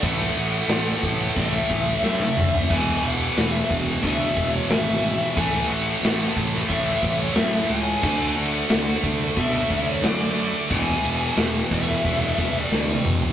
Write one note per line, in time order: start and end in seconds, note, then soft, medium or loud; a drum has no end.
0.02 0.27 A1 loud
0.02 1.34 A2 medium
0.02 1.37 E3 loud
0.02 1.33 F#5 loud
0.02 kick loud
0.02 ride loud
0.06 1.36 A3 loud
0.19 snare soft
0.36 0.60 A1 medium
0.36 ride medium
0.68 0.93 A1 medium
0.68 snare loud
0.68 ride loud
1.03 1.27 A1 medium
1.03 kick medium
1.03 ride medium
1.35 1.60 A1 loud
1.35 2.67 A2 medium
1.35 2.73 E3 medium
1.35 2.69 A3 medium
1.35 kick loud
1.35 ride loud
1.39 2.03 E5 loud
1.69 1.93 A1 medium
1.69 kick medium
1.69 ride medium
2.03 2.27 F#2 loud
2.03 2.73 E5 loud
2.03 snare medium
2.20 high tom medium
2.37 2.61 D2 medium
2.37 mid tom loud
2.53 floor tom loud
2.70 2.94 E1 loud
2.70 4.02 E2 medium
2.70 4.02 B2 loud
2.70 4.06 E3 loud
2.70 3.05 G#5 loud
2.70 kick loud
2.70 ride loud
2.70 crash loud
2.88 snare soft
3.03 3.27 E1 medium
3.03 3.51 F#5 loud
3.03 ride medium
3.37 3.61 E1 loud
3.37 snare loud
3.37 ride loud
3.51 3.67 E5 loud
3.71 3.94 E1 loud
3.71 kick medium
3.71 ride medium
3.88 snare soft
4.03 4.27 D2 loud
4.03 5.35 E2 medium
4.03 5.36 B2 medium
4.03 5.36 E3 medium
4.03 kick loud
4.03 ride loud
4.07 4.53 E5 medium
4.36 4.60 E1 medium
4.36 kick medium
4.36 ride medium
4.53 4.70 C#5 medium
4.70 5.18 G#1 loud
4.70 5.39 E5 loud
4.70 snare loud
4.70 ride loud
5.03 ride medium
5.34 5.61 A1 loud
5.34 6.68 A2 loud
5.34 5.66 G#5 loud
5.34 kick loud
5.34 ride loud
5.38 6.69 E3 loud
5.38 6.73 A3 loud
5.68 5.93 A1 medium
5.68 6.32 F#5 loud
5.68 ride medium
6.01 6.26 A1 medium
6.01 snare loud
6.01 ride loud
6.36 6.60 A1 medium
6.36 kick medium
6.36 ride medium
6.54 snare soft
6.68 6.94 A1 medium
6.68 8.01 A2 medium
6.68 8.02 E3 medium
6.68 7.19 E5 medium
6.68 kick medium
6.68 ride loud
6.73 8.03 A3 medium
7.02 7.27 A1 loud
7.02 kick medium
7.02 ride medium
7.19 7.34 C#5 medium
7.35 7.61 F#2 loud
7.35 7.67 E5 loud
7.35 snare loud
7.35 ride loud
7.69 7.93 C#2 medium
7.69 8.36 G#5 loud
7.69 ride medium
8.02 8.27 D2 loud
8.02 9.35 D3 loud
8.02 9.36 A3 loud
8.02 kick loud
8.02 crash loud
8.06 9.37 D4 loud
8.37 8.61 D2 medium
8.37 9.00 F#5 medium
8.37 ride medium
8.70 8.94 D2 medium
8.70 snare loud
8.70 ride loud
9.03 9.28 D2 medium
9.03 kick medium
9.03 ride medium
9.21 snare soft
9.36 9.61 B2 medium
9.36 10.68 D3 medium
9.36 10.70 A3 medium
9.36 9.85 E5 medium
9.36 kick loud
9.36 ride loud
9.40 10.71 D4 medium
9.70 9.95 D2 medium
9.70 kick medium
9.70 ride medium
9.88 10.05 C#5 medium
10.02 10.51 F#2 loud
10.02 10.74 D5 medium
10.02 snare loud
10.02 ride loud
10.38 ride medium
10.70 10.94 E1 loud
10.70 12.02 E2 loud
10.70 12.03 B2 loud
10.70 12.04 E3 loud
10.70 11.34 G#5 loud
10.70 kick loud
10.70 ride loud
10.88 snare soft
11.03 11.28 E1 medium
11.03 ride medium
11.37 11.61 E1 loud
11.37 snare loud
11.37 ride loud
11.71 11.95 E1 medium
11.71 12.60 E5 loud
11.71 kick medium
11.71 ride medium
11.89 snare soft
12.03 12.29 E1 loud
12.03 13.33 E2 medium
12.03 13.33 B2 medium
12.03 kick loud
12.03 ride loud
12.08 13.33 E3 medium
12.38 12.62 E1 medium
12.38 kick medium
12.38 ride medium
12.60 13.02 D5 loud
12.72 12.96 D2 loud
12.72 snare medium
12.88 high tom medium
13.05 13.33 E1 loud
13.05 mid tom loud
13.21 floor tom loud